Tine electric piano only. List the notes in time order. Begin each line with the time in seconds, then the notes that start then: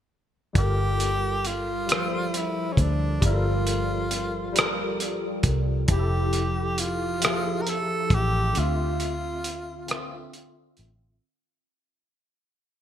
0.53 G3 F4 A4
0.59 A#4
1.87 F3 G3
1.91 A4 C5
3.20 G3 F4 A4
3.26 A#4
4.53 G3 F4
4.57 A4 A#4
5.86 F3 E4 G4
5.92 G#4
5.99 A4
7.19 F3 E5
7.23 G4 G#4
7.32 A4
8.53 D3 C4
8.57 F4 E5
9.87 D3 C4 E5
9.92 F4